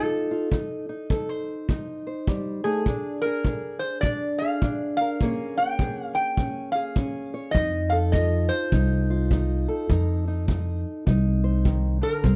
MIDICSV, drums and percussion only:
0, 0, Header, 1, 2, 480
1, 0, Start_track
1, 0, Tempo, 586510
1, 420, Time_signature, 4, 2, 24, 8
1, 10113, End_track
2, 0, Start_track
2, 0, Title_t, "Drums"
2, 422, Note_on_c, 9, 36, 63
2, 504, Note_off_c, 9, 36, 0
2, 901, Note_on_c, 9, 36, 68
2, 983, Note_off_c, 9, 36, 0
2, 1381, Note_on_c, 9, 36, 66
2, 1463, Note_off_c, 9, 36, 0
2, 1861, Note_on_c, 9, 36, 66
2, 1943, Note_off_c, 9, 36, 0
2, 2341, Note_on_c, 9, 36, 60
2, 2423, Note_off_c, 9, 36, 0
2, 2820, Note_on_c, 9, 36, 65
2, 2902, Note_off_c, 9, 36, 0
2, 3299, Note_on_c, 9, 36, 66
2, 3381, Note_off_c, 9, 36, 0
2, 3780, Note_on_c, 9, 36, 69
2, 3862, Note_off_c, 9, 36, 0
2, 4260, Note_on_c, 9, 36, 64
2, 4342, Note_off_c, 9, 36, 0
2, 4739, Note_on_c, 9, 36, 65
2, 4820, Note_off_c, 9, 36, 0
2, 5216, Note_on_c, 9, 36, 66
2, 5298, Note_off_c, 9, 36, 0
2, 5696, Note_on_c, 9, 36, 71
2, 5778, Note_off_c, 9, 36, 0
2, 6176, Note_on_c, 9, 36, 63
2, 6257, Note_off_c, 9, 36, 0
2, 6656, Note_on_c, 9, 36, 63
2, 6738, Note_off_c, 9, 36, 0
2, 7137, Note_on_c, 9, 36, 64
2, 7219, Note_off_c, 9, 36, 0
2, 7618, Note_on_c, 9, 36, 72
2, 7699, Note_off_c, 9, 36, 0
2, 8098, Note_on_c, 9, 36, 62
2, 8180, Note_off_c, 9, 36, 0
2, 8578, Note_on_c, 9, 36, 68
2, 8660, Note_off_c, 9, 36, 0
2, 9058, Note_on_c, 9, 36, 64
2, 9140, Note_off_c, 9, 36, 0
2, 9537, Note_on_c, 9, 36, 69
2, 9619, Note_off_c, 9, 36, 0
2, 10016, Note_on_c, 9, 36, 65
2, 10098, Note_off_c, 9, 36, 0
2, 10113, End_track
0, 0, End_of_file